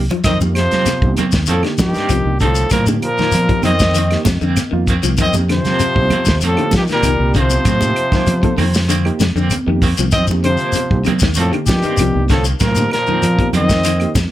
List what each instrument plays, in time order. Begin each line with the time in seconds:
0.10 clean electric guitar F3, closed hi-hat, low conga
0.24 fingered electric bass F2, clean electric guitar D#3 A#3 C4, trombone section D#3, trombone C4, trumpet D#5, kick, snare, closed hi-hat, low conga, claves, shekere
0.40 fingered electric bass F2, reed electric piano A#3 D#4 G4, high conga, shekere
0.55 trombone section C3, clean electric guitar C3, trombone F3, trumpet C5, snare, closed hi-hat, claves
0.71 clean electric guitar A#3 C4, snare, closed hi-hat, low conga, shekere
0.86 clean electric guitar C3, muted fingered electric bass stroke, snare, closed hi-hat, high conga, shekere
1.02 fingered electric bass C2, reed electric piano A#3 D#4 G4, kick, high conga
1.17 clean electric guitar C3 D#3 A#3 C4, closed hi-hat, high conga, low conga, claves, shekere
1.32 fingered electric bass D#2, muted clean electric guitar stroke, kick, snare, closed hi-hat, shekere
1.46 fingered electric bass F2, trombone section A2, clean electric guitar D#3 A#3 C4, trombone F3, trumpet A4, closed hi-hat, shekere
1.63 clean electric guitar D3, reed electric piano A#3 D#4 G4, snare, closed hi-hat, claves
1.78 trombone section G2, trombone D#3, fingered electric bass F3, trumpet G4, kick, snare, closed hi-hat, high conga, shekere
1.94 clean electric guitar A#3 C4, muted fingered electric bass stroke, snare, closed hi-hat, shekere
2.09 fingered electric bass C2, clean electric guitar F3, closed hi-hat, high conga, claves, shekere
2.25 fingered electric bass C2, reed electric piano A#3 D#4 G4
2.40 trombone section A2, clean electric guitar D3 D#3 A#3 C4, trombone F3, trumpet A4, kick, closed hi-hat, shekere
2.55 closed hi-hat, shekere
2.70 fingered electric bass A2, trombone section A#2, clean electric guitar C3 D#3 A#3 C4, trombone F3, trumpet A#4, kick, closed hi-hat, low conga, claves, shekere
2.86 clean electric guitar D3, reed electric piano A#3 D#4 G4, closed hi-hat, high conga, shekere
3.02 trombone section A#2, trombone F3, trumpet A#4, closed hi-hat, claves
3.18 clean electric guitar D#3 A#3, snare, low conga, shekere
3.32 fingered electric bass F3, closed hi-hat, high conga, shekere
3.49 clean electric guitar F3, reed electric piano A#3 D#4 G4, kick, closed hi-hat, high conga
3.63 fingered electric bass F2, clean electric guitar D#3 A#3 C4, trombone section D#3, trombone C4, trumpet D#5, closed hi-hat, high conga, low conga, claves, shekere
3.79 kick, snare, shekere
3.94 clean electric guitar D#3 A#3 C4, closed hi-hat, shekere
4.11 reed electric piano A#3 D#4 G4, snare, closed hi-hat, claves
4.25 fingered electric bass F2, clean electric guitar C3, kick, snare, closed hi-hat, high conga, shekere
4.41 fingered electric bass F2, clean electric guitar D3 A#3 C4, shekere
4.56 snare, closed hi-hat, high conga, claves, shekere
4.71 fingered electric bass F2, clean electric guitar D#3, reed electric piano A#3 D#4 F4
4.87 clean electric guitar D#3 A#3 C4, kick, closed hi-hat, shekere
5.03 fingered electric bass C2, clean electric guitar F3, closed hi-hat, high conga, shekere
5.17 fingered electric bass F2, clean electric guitar D#3 A#3 C4, trombone section D#3, kick, closed hi-hat, low conga, claves, shekere
5.22 trombone C4, trumpet D#5
5.33 fingered electric bass F2, reed electric piano A#3 D#4 G4, high conga, shekere
5.49 trombone section C3, clean electric guitar D3, trumpet C5, snare, closed hi-hat, claves
5.55 trombone F3
5.65 clean electric guitar A#3 C4, snare, closed hi-hat, low conga, shekere
5.80 clean electric guitar C3, muted fingered electric bass stroke, closed hi-hat, shekere
5.95 fingered electric bass C2, reed electric piano A#3 D#4 G4, kick
6.10 clean electric guitar C3 D#3 A#3 C4, closed hi-hat, high conga, low conga, claves, shekere
6.25 fingered electric bass D#2, muted clean electric guitar stroke, kick, snare, closed hi-hat, shekere
6.41 fingered electric bass F2, trombone section A2, clean electric guitar D#3 A#3 C4, closed hi-hat, shekere
6.46 trombone F3, trumpet A4
6.57 clean electric guitar D3, reed electric piano A#3 D#4 G4, closed hi-hat, claves
6.71 fingered electric bass F3, kick, snare, closed hi-hat, high conga, shekere
6.76 trombone section G2, trumpet G4
6.81 trombone D#3
6.88 clean electric guitar D#3 A#3 C4, muted fingered electric bass stroke, snare, closed hi-hat, shekere
6.92 trombone section A#2, trombone G3, trumpet A#4
7.03 fingered electric bass C2, clean electric guitar D#3, closed hi-hat, high conga, claves, shekere
7.19 fingered electric bass C2, reed electric piano A#3 D#4 G4
7.34 trombone section C3, clean electric guitar D3 D#3 A#3 C4, kick, closed hi-hat, shekere
7.39 trombone F3, trumpet C5
7.50 closed hi-hat, high conga, shekere
7.65 fingered electric bass A2, clean electric guitar C3 D#3 A#3 C4, kick, closed hi-hat, low conga, claves, shekere
7.81 reed electric piano A#3 D#4 G4, closed hi-hat, high conga, shekere
7.96 closed hi-hat, claves
8.12 clean electric guitar D#3 A#3, muted clean electric guitar stroke, kick, snare, low conga, shekere
8.27 fingered electric bass F3, closed hi-hat, high conga, shekere
8.43 clean electric guitar F3, reed electric piano A#3 D#4 A4, kick, closed hi-hat, high conga
8.58 fingered electric bass F2, clean electric guitar D#3 A#3 C4, open hi-hat, high conga, low conga, claves, shekere
8.74 snare, shekere
8.88 clean electric guitar D3 D#3 A#3 C4, closed hi-hat, shekere
9.05 reed electric piano A#3 D#4 G4, closed hi-hat, claves
9.20 fingered electric bass F2, clean electric guitar C3, snare, closed hi-hat, high conga, shekere
9.35 fingered electric bass F2, clean electric guitar D3 A#3 C4, shekere
9.50 closed hi-hat, high conga, claves, shekere
9.67 fingered electric bass F2, clean electric guitar D#3, reed electric piano A#3 D#4 G4
9.82 clean electric guitar D#3 A#3 C4, kick, open hi-hat, shekere
9.97 fingered electric bass C2, clean electric guitar F3, closed hi-hat, high conga, shekere
10.12 fingered electric bass F2, trombone section D#3, clean electric guitar C4, trombone C4, trumpet D#5, muted clean electric guitar stroke, kick, closed hi-hat, low conga, claves, shekere
10.27 fingered electric bass F2, reed electric piano A#3 D#4 G4, high conga, shekere
10.42 trombone section C3, clean electric guitar D3, trumpet C5, closed hi-hat, claves
10.48 trombone F3
10.57 clean electric guitar A#3, closed hi-hat, shekere
10.72 clean electric guitar C3, muted fingered electric bass stroke, closed hi-hat, shekere
10.77 high conga
10.90 fingered electric bass C2, reed electric piano A#3 D#4 G4, kick
11.05 clean electric guitar C3 D#3 A#3 C4, closed hi-hat, high conga, low conga, claves, shekere
11.19 fingered electric bass D#2, clean electric guitar D#3, kick, snare, closed hi-hat, shekere
11.34 fingered electric bass F2, trombone section A2, clean electric guitar D#3 A#3 C4, closed hi-hat, shekere
11.39 trombone F3, trumpet A4
11.52 clean electric guitar D3, reed electric piano A#3 D#4 G4, closed hi-hat, claves
11.66 trombone section G2, trombone D#3, fingered electric bass F3, trumpet G4, kick, snare, closed hi-hat, high conga, shekere
11.83 clean electric guitar D#3 A#3 C4, muted fingered electric bass stroke, closed hi-hat, shekere
11.97 fingered electric bass C2, clean electric guitar F3, closed hi-hat, high conga, claves, shekere
12.14 fingered electric bass C2, reed electric piano A#3 D#4 G4
12.29 trombone section A2, clean electric guitar D3 D#3 A#3 C4, trumpet A4, kick, snare, closed hi-hat, shekere
12.33 trombone F3
12.45 closed hi-hat, shekere
12.60 fingered electric bass A2, trombone section A#2, clean electric guitar C3 D#3 A#3 C4, trumpet A#4, kick, snare, closed hi-hat, low conga, claves, shekere
12.65 trombone F3
12.75 clean electric guitar D3, reed electric piano A#3 D#4 G4, closed hi-hat, high conga, shekere
12.91 trombone section A#2, trumpet A#4, snare, closed hi-hat, claves
12.98 trombone F3
13.07 clean electric guitar D#3 A#3 C4, low conga, shekere
13.22 fingered electric bass F3, closed hi-hat, high conga, shekere
13.39 clean electric guitar F3, reed electric piano A#3 D#4 G4, kick, closed hi-hat, high conga
13.53 fingered electric bass F2, clean electric guitar D#3 A#3 C4, trombone section D#3, trumpet D#5, closed hi-hat, high conga, low conga, claves, shekere
13.57 trombone C4
13.69 kick, snare, shekere
13.84 clean electric guitar D#3 A#3 C4, closed hi-hat, shekere
14.00 reed electric piano A#3 D#4 G4, closed hi-hat, claves
14.15 fingered electric bass F2, muted clean electric guitar stroke, kick, snare, closed hi-hat, high conga, shekere